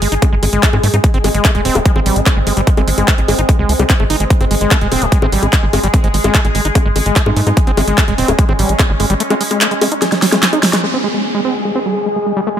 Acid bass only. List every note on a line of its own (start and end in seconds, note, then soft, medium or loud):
0.02 0.08 G#3 medium
0.12 0.15 D#4 medium
0.22 0.25 G#3 medium
0.32 0.35 G#3 medium
0.43 0.45 G#3 medium
0.53 0.65 G#3 medium
0.63 0.69 A3 medium
0.73 0.77 G#3 medium
0.83 0.88 A3 medium
0.94 0.96 D#4 medium
1.04 1.06 G#3 medium
1.14 1.18 C4 loud
1.24 1.29 G#3 loud
1.35 1.46 G#3 medium
1.45 1.51 A3 medium
1.55 1.61 G#3 loud
1.65 1.77 C4 loud
1.75 1.80 G#3 medium
1.86 1.92 G#3 medium
1.96 2.00 C4 loud
2.06 2.18 G3 medium
2.16 2.20 G#3 medium
2.26 2.29 G#3 medium
2.37 2.39 G#3 medium
2.47 2.53 G#3 medium
2.57 2.61 G3 loud
2.67 2.70 A3 loud
2.77 2.82 G#3 loud
2.88 2.90 G#3 medium
2.98 3.10 G#3 medium
3.08 3.14 A3 medium
3.18 3.21 G#3 medium
3.28 3.35 G#3 medium
3.39 3.41 D#4 medium
3.49 3.51 G#3 medium
3.59 3.71 G#3 medium
3.69 3.73 A3 medium
3.79 3.84 G3 medium
3.90 3.94 C4 loud
4.00 4.04 A3 medium
4.10 4.16 D#4 loud
4.20 4.24 G#3 medium
4.30 4.33 G#3 loud
4.41 4.45 C4 loud
4.51 4.55 G#3 loud
4.61 4.73 G#3 medium
4.71 4.78 A3 medium
4.81 4.88 G#3 loud
4.92 5.03 C4 loud
5.02 5.06 G#3 medium
5.12 5.18 G#3 medium
5.22 5.26 C4 medium
5.32 5.44 G3 medium
5.43 5.47 G#3 medium
5.53 5.55 G#3 medium
5.63 5.66 G#3 medium
5.73 5.80 G#3 medium
5.84 5.88 G3 loud
5.94 5.96 A3 loud
6.04 6.08 G#3 loud
6.14 6.17 G#3 medium
6.24 6.36 G#3 medium
6.35 6.41 A3 medium
6.45 6.47 G#3 medium
6.55 6.61 G#3 medium
6.65 6.68 D#4 medium
6.75 6.78 G#3 medium
6.86 6.88 G#3 medium
6.96 6.98 G#3 medium
7.06 7.18 G#3 medium
7.16 7.22 A3 medium
7.26 7.31 G#3 medium
7.37 7.41 A3 medium
7.47 7.49 D#4 medium
7.57 7.59 G#3 medium
7.67 7.71 C4 loud
7.77 7.82 G#3 loud
7.88 7.99 G#3 medium
7.98 8.04 A3 medium
8.08 8.14 G#3 loud
8.18 8.30 C4 loud
8.28 8.33 G#3 medium
8.39 8.45 G#3 medium
8.49 8.53 C4 medium
8.59 8.71 G3 medium
8.69 8.73 G#3 medium
8.79 8.82 G#3 medium
8.90 8.92 G#3 medium
9.00 9.06 G#3 medium
9.10 9.14 G3 loud
9.20 9.23 A3 loud
9.30 9.35 G#3 loud
9.41 9.43 G#3 medium
9.51 9.63 G#3 medium
9.61 9.67 A3 medium
9.71 9.74 G#3 medium
9.81 9.88 G#3 medium
9.92 9.94 D#4 medium
10.02 10.04 G#3 medium
10.12 10.15 G#3 medium
10.22 10.26 G3 medium
10.32 10.39 G#3 medium
10.43 10.45 G#3 medium
10.53 10.59 D#4 loud
10.63 10.67 G#3 medium
10.73 10.76 G#3 loud
10.83 10.86 G#3 loud
10.94 10.98 C4 loud
11.04 11.08 G#3 loud
11.14 11.26 G#3 medium
11.24 11.31 A3 medium
11.35 11.41 G#3 loud
11.45 11.56 C4 loud
11.55 11.59 G#3 medium
11.65 11.71 G#3 medium
11.75 11.80 C4 medium
11.86 11.97 G3 medium
11.96 12.00 G#3 medium
12.06 12.08 G#3 medium
12.16 12.19 G#3 medium
12.26 12.33 G#3 medium
12.37 12.41 G3 loud
12.47 12.49 A3 loud